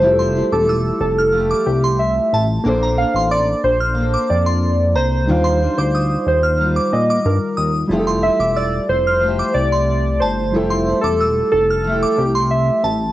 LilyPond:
<<
  \new Staff \with { instrumentName = "Synth bell" } { \time 4/4 \key f \major \tempo 4 = 91 r16 c'''16 r16 d'''16 e'''16 r8 f'''16 r16 d'''16 r16 c'''16 r8 a''16 r16 | r16 bes''16 r16 c'''16 d'''16 r8 f'''16 r16 d'''16 r16 c'''16 r8 bes''16 r16 | r16 c'''16 r16 d'''16 ees'''16 r8 f'''16 r16 d'''16 r16 d'''16 r8 ees'''16 r16 | r16 c'''16 r16 d'''16 e'''16 r8 f'''16 r16 d'''16 r16 c'''16 r8 a''16 r16 |
r16 c'''16 r16 d'''16 e'''16 r8 f'''16 r16 d'''16 r16 c'''16 r8 a''16 r16 | }
  \new Staff \with { instrumentName = "Synth keys" } { \time 4/4 \key f \major c''8. a'8. a'4 g'8 e''8. r16 | r8 f''8 d''8 c''4 d''4 c''8~ | c''8. c''8. c''4 ees''8 bes'8. r16 | r8 e''8 d''8 c''4 d''4 c''8~ |
c''8. a'8. a'4 g'8 e''8. r16 | }
  \new Staff \with { instrumentName = "Reed electric piano" } { \time 4/4 \key f \major <g e' f' g' a'>1 | <bes d' a' c''>1 | <g ees' f' f''>1 | <g e' f' aes' a'>1 |
<g e' f' a'>1 | }
  \new Staff \with { instrumentName = "Steel-string acoustic guitar" } { \time 4/4 \key f \major <f a e' g'>8 <a e' g'>4. <f a e' g'>2 | <bes d' a' c''>8 <d' a' c''>4. <bes d' a' c''>2 | <ees g d' f'>8 <g d' f'>4. <ees g f'>2 | <f a e' g'>8 <a e' g'>4. <f a e' g'>2 |
<f a e' g'>8 <a e' g'>4. <f a e' g'>2 | }
  \new Staff \with { instrumentName = "Analog synth bass" } { \clef bass \time 4/4 \key f \major f,,8. e,,8. f,,4 c,4 a,,8 | bes,,8. a,,8. bes,,4 f,4 c,8 | ees,8. d,8. ees,4 bes,8 g,16 r16 ees,8 | f,,8. e,,8. f,,4 c,4 g,,8 |
f,,8. e,,8. f,,4 c,4 a,,8 | }
>>